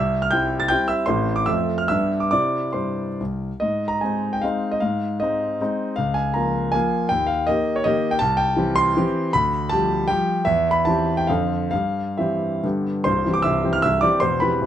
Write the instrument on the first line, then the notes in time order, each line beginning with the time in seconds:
grand piano
Already playing: C2 E5 E6
0.22 F6
0.31 G3 C4 E4 G5 G6
0.60 A6
0.68 G3 C4 E4 G5 G6
0.88 E5 E6
1.06 A1 A3 C4 E4 C5 C6
1.36 D6
1.46 F2 A3 C4 F4 E5 E6
1.78 F6
1.88 G2 G3 B3 D4 E5 E6
2.20 D6
2.31 C3 C4 E4 D5 D6
2.73 G2 C5 C6
3.20 C2
3.60 G#2 D#5
3.88 A#5
4.01 G#3 C4 D#4 G#5
4.33 G5
4.42 G#3 C4 D#4 F5
4.71 D#5
4.80 G#2 F5
5.20 G#3 C4 D#4 D#5
5.61 G#3 C4 D#4
5.96 C#2 F5
6.14 G#5
6.34 F3 A#3 F4 A#5
6.72 F3 A#3 F4 G#5
7.09 D#2 G5
7.27 F5
7.47 D#3 A#3 G4 D#5
7.76 C#5
7.84 D#3 A#3 G4 D#5
8.11 G5
8.19 C2 A5
8.37 G5
8.57 E3 C4 G4
8.76 C6
8.97 E3 C4 G4
9.33 D2 B5
9.69 F3 G3 G4 A5
10.08 F3 G3 G4 G5
10.45 E2 E5
10.71 B5
10.85 E3 C4 G4 A5
11.17 G5
11.27 F2 D3 C4 A4 F5
11.71 G2 F5
12.18 E3 C4 G4 E5
12.63 G2 D3 B3 G4
13.04 C1 C2 C5 C6
13.26 E3 C4 G4
13.34 D6
13.42 C1 C2 E5 E6
13.64 E3 C4 G4
13.73 F6
13.82 C1 C2 E5 E6
14.01 E3 C4 G4 D5 D6
14.20 E1 E2 C5 C6
14.40 E3 C4 G4 B4 B5
14.62 E1 E2